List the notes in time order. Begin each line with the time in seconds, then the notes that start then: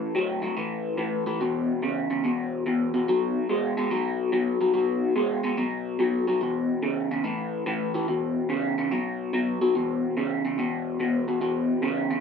Already playing: A2 E3
0.15 A2 F#3
0.42 A2 F#3
0.57 A2 E3
0.98 A2 E3
1.26 A2 E3
1.40 E2 B2
1.82 E2 C#3
2.10 E2 C#3
2.24 E2 B2
2.66 E2 B2
2.94 E2 B2
3.08 B2 F#3
3.49 B2 G#3
3.77 B2 G#3
3.90 B2 F#3
4.32 B2 F#3
4.61 B2 F#3
4.74 B2 F#3
5.16 B2 G#3
5.43 B2 G#3
5.57 B2 F#3
5.99 B2 F#3
6.28 B2 F#3
6.41 E2 B2
6.83 E2 C#3
7.11 E2 C#3
7.24 A2 E3
7.66 A2 E3
7.94 A2 E3
8.08 E2 B2
8.49 E2 C#3
8.78 E2 C#3
8.91 B2 F#3
9.33 B2 F#3
9.61 B2 F#3
9.75 E2 B2
10.17 E2 C#3
10.45 E2 C#3
10.58 E2 B2
10.99 E2 B2
11.28 E2 B2
11.41 E2 B2
11.82 E2 C#3
12.10 E2 C#3